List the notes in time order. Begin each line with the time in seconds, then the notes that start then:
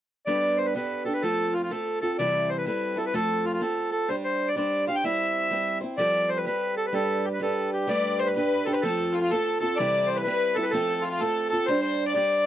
0.26 G3 B3 D4 G4 A4 D5
0.57 C5
0.66 B4
0.75 B3 D4 G4 A4 B4
1.05 D4 G4 A4
1.14 B4
1.22 F3 A3 C4 F4 A4
1.53 F4
1.63 F4
1.70 A3 C4 F4 A4
2.01 C4 F4 A4
2.19 C3 E3 G3 C4 E4 A4 D5
2.49 C5
2.58 B4
2.66 G3 C4 E4 A4 B4
2.96 G3 C4 E4 A4
3.06 B4
3.14 F3 A3 C4 F4 A4
3.45 F4
3.54 F4
3.60 A3 C4 F4 A4
3.92 A4
4.08 G3 D4 G4 C5
4.24 C5
4.48 D5
4.56 G3 D4 G4 C5 D5
4.87 D4 G4 C5 F5
4.96 G5
5.04 G3 C4 E4 C5 E5
5.51 G3 C4 E4 C5
5.81 C4 E4 C5
5.98 F3 G3 C4 G4 A4 D5
6.29 C5
6.38 B4
6.45 G3 C4 G4 A4 B4
6.77 A4
6.86 B4
6.93 G3 D4 G4 A4 B4
7.25 G4
7.33 B4
7.40 G3 D4 G4 A4 B4
7.73 G4
7.87 G3 A3 D4 G4 B4 D5
8.19 C5
8.26 B4
8.35 A3 D4 G4 B4
8.65 D4 G4 A4 B4
8.72 B4 C5
8.82 F3 A3 C4 F4 A4
9.12 F4
9.21 F4
9.30 A3 C4 F4 A4
9.60 C4 F4 A4
9.76 C3 E3 G3 C4 E4 D5
9.81 A4
10.07 C5
10.16 B4
10.23 G3 C4 B4
10.28 E4 A4
10.55 G3 C4 E4 A4
10.63 B4
10.71 F3 A3 C4 F4 A4
11.01 F4
11.11 F4
11.19 A3 C4 F4 A4
11.49 F4 A4
11.54 C4
11.66 G3 D4 G4 C5
11.82 C5
12.06 D5
12.14 G3 D4 G4 C5 D5